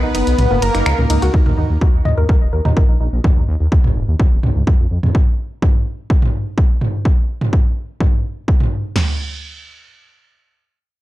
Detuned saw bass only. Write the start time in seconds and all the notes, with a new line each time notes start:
0.03 B1
0.15 F#1
0.27 B1
0.38 B1
0.51 F#1
0.62 F#1
0.75 F#1
0.86 C#2
0.98 C#2
1.10 C#2
1.22 C#2
1.34 D#2
1.46 D#2
1.58 D#2
1.70 D#2
1.81 D#2
1.94 D#2
2.05 D#2
2.18 D#2
2.29 D#2
2.41 D#1
2.53 D#2
2.65 D#2
2.77 A#1
2.89 A#1
3.00 A#1
3.13 A#1
3.24 D#2
3.37 D#2
3.48 D#2
3.60 D#2
3.72 D#2
3.84 D#2
3.96 D#1
4.08 D#2
4.20 D#2
4.32 D#1
4.43 C#2
4.56 C#2
4.67 F2
4.79 F2
4.91 F2
5.03 F2